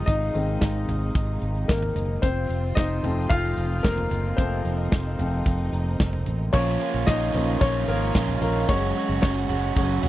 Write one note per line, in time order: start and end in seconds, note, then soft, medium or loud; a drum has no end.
0.00 6.50 C3 medium
0.00 0.34 D#3 soft
0.00 2.19 D#3 medium
0.00 0.34 G#3 soft
0.00 2.19 G#3 medium
0.00 0.35 C4 medium
0.00 0.08 D#4 medium
0.00 2.19 D#4 medium
0.00 2.25 F4 medium
0.00 0.06 D#5 medium
0.00 2.25 F5 medium
0.06 0.30 G#1 medium
0.06 0.85 D#4 medium
0.06 0.84 D#5 medium
0.06 kick medium
0.06 closed hi-hat medium
0.34 0.57 G#1 medium
0.34 1.11 D#3 medium
0.34 1.11 G#3 soft
0.34 1.12 C4 medium
0.34 closed hi-hat medium
0.61 0.84 G#1 loud
0.61 kick medium
0.61 snare loud
0.61 closed hi-hat medium
0.88 1.10 G#1 medium
0.88 closed hi-hat medium
0.88 floor tom medium
1.15 1.37 G#1 medium
1.15 kick loud
1.15 closed hi-hat medium
1.42 1.64 G#1 medium
1.42 closed hi-hat medium
1.68 1.91 G#1 medium
1.68 2.19 A#3 medium
1.68 2.24 A#4 medium
1.68 kick loud
1.68 snare loud
1.68 closed hi-hat medium
1.82 floor tom medium
1.96 2.18 F#1 medium
1.96 closed hi-hat medium
1.96 floor tom medium
2.22 2.45 F1 loud
2.22 6.50 F3 medium
2.22 6.50 C4 medium
2.22 2.73 C4 medium
2.22 4.36 F4 medium
2.22 2.78 C5 medium
2.22 kick medium
2.22 closed hi-hat medium
2.49 2.72 F1 medium
2.49 closed hi-hat medium
2.75 2.99 F1 medium
2.75 3.27 D#4 medium
2.75 3.26 D#5 medium
2.75 kick medium
2.75 snare medium
2.75 closed hi-hat medium
3.03 3.26 F1 medium
3.03 3.80 F3 medium
3.03 3.81 A3 soft
3.03 3.81 C4 medium
3.03 closed hi-hat medium
3.03 floor tom medium
3.30 3.53 F1 medium
3.30 3.81 F4 medium
3.30 3.80 F5 loud
3.30 kick loud
3.30 closed hi-hat medium
3.57 3.80 F1 medium
3.57 closed hi-hat medium
3.83 4.07 F1 medium
3.83 4.35 A#3 medium
3.83 4.39 A#4 medium
3.83 kick loud
3.83 snare loud
3.83 closed hi-hat medium
3.98 floor tom medium
4.11 4.33 F#1 medium
4.11 closed hi-hat medium
4.11 floor tom medium
4.37 4.60 F1 loud
4.37 4.62 F3 medium
4.37 4.74 A3 soft
4.37 5.18 C4 medium
4.37 6.52 D#4 medium
4.37 5.95 C5 medium
4.37 kick medium
4.37 closed hi-hat medium
4.65 4.87 F1 medium
4.65 closed hi-hat medium
4.92 5.14 F1 loud
4.92 kick medium
4.92 snare loud
4.92 closed hi-hat medium
5.19 5.41 F1 medium
5.19 5.43 F3 soft
5.19 5.43 A3 soft
5.19 5.44 C4 medium
5.19 closed hi-hat medium
5.19 floor tom medium
5.46 5.68 F1 medium
5.46 kick loud
5.46 closed hi-hat medium
5.73 5.95 F1 medium
5.73 closed hi-hat medium
6.00 6.22 F1 medium
6.00 kick loud
6.00 snare loud
6.00 closed hi-hat medium
6.13 floor tom medium
6.26 6.49 A1 medium
6.26 closed hi-hat medium
6.26 floor tom medium
6.53 6.76 A#1 loud
6.53 6.80 A#2 medium
6.53 10.09 C#3 medium
6.53 7.33 F3 medium
6.53 6.81 F3 medium
6.53 8.67 F3 medium
6.53 7.33 A#3 soft
6.53 8.67 A#3 medium
6.53 6.81 A#3 medium
6.53 6.80 C#4 medium
6.53 7.04 C#4 medium
6.53 8.67 F4 medium
6.53 6.79 F4 loud
6.53 7.09 C#5 loud
6.53 kick loud
6.53 crash medium
6.80 7.06 A#3 soft
6.80 7.07 C#4 medium
6.80 7.07 F4 medium
6.80 closed hi-hat medium
6.94 7.05 A#1 medium
7.06 7.30 A#1 medium
7.06 7.34 F3 medium
7.06 7.34 A#3 medium
7.06 7.34 C#4 medium
7.06 7.58 D#4 medium
7.06 7.33 F4 medium
7.06 7.57 D#5 loud
7.06 kick loud
7.06 snare loud
7.06 closed hi-hat medium
7.34 7.56 A#1 medium
7.34 7.59 F3 soft
7.34 7.59 A#3 soft
7.34 7.61 A#3 soft
7.34 7.61 C#4 medium
7.34 7.59 C#4 medium
7.34 7.61 F4 medium
7.34 closed hi-hat medium
7.34 floor tom medium
7.61 7.83 A#1 medium
7.61 7.88 A#2 medium
7.61 7.88 F3 medium
7.61 7.89 A#3 medium
7.61 7.87 C#4 medium
7.61 7.86 F4 medium
7.61 7.86 C#5 loud
7.61 kick loud
7.61 closed hi-hat medium
7.87 8.10 G#1 medium
7.87 8.39 A#3 medium
7.87 8.14 A#3 soft
7.87 8.15 C#4 medium
7.87 8.15 F4 medium
7.87 8.38 A#4 medium
7.87 closed hi-hat medium
8.14 8.37 A#1 medium
8.14 8.42 F3 medium
8.14 8.42 A#3 medium
8.14 8.42 C#4 medium
8.14 8.40 F4 medium
8.14 kick loud
8.14 snare loud
8.14 closed hi-hat loud
8.28 floor tom medium
8.41 8.64 A#1 medium
8.41 8.68 A#3 medium
8.41 8.69 A#3 soft
8.41 8.68 C#4 medium
8.41 8.69 F4 medium
8.41 8.67 A#4 medium
8.41 closed hi-hat medium
8.41 floor tom medium
8.68 8.91 F#1 loud
8.68 8.96 F#3 medium
8.68 9.05 F#3 medium
8.68 10.09 F#3 medium
8.68 10.09 G#3 medium
8.68 8.96 G#3 medium
8.68 9.05 G#3 soft
8.68 8.96 C#4 loud
8.68 9.20 C#4 medium
8.68 10.09 F#4 medium
8.68 8.94 F#4 loud
8.68 9.19 C#5 loud
8.68 kick loud
8.68 closed hi-hat loud
8.95 9.21 G#3 soft
8.95 9.22 C#4 medium
8.95 9.22 F#4 medium
8.95 closed hi-hat medium
9.09 9.20 F#1 loud
9.22 9.45 F#1 loud
9.22 9.49 F#3 medium
9.22 9.50 G#3 medium
9.22 9.49 C#4 medium
9.22 9.73 C#4 medium
9.22 9.47 F#4 medium
9.22 9.72 C#5 medium
9.22 kick loud
9.22 snare loud
9.22 closed hi-hat medium
9.48 9.72 F#1 loud
9.48 9.75 G#3 medium
9.48 9.75 C#4 medium
9.48 9.76 F#4 medium
9.48 closed hi-hat medium
9.48 floor tom medium
9.75 9.99 F#1 medium
9.75 10.03 F#3 medium
9.75 10.01 F#3 soft
9.75 10.03 G#3 medium
9.75 10.01 G#3 soft
9.75 10.03 C#4 medium
9.75 10.01 C#4 medium
9.75 10.02 F#4 medium
9.75 kick loud
9.75 closed hi-hat medium
10.03 10.09 F1 medium
10.03 10.09 G#3 soft
10.03 10.09 C#4 medium
10.03 10.09 F#4 medium
10.03 closed hi-hat medium
10.03 floor tom medium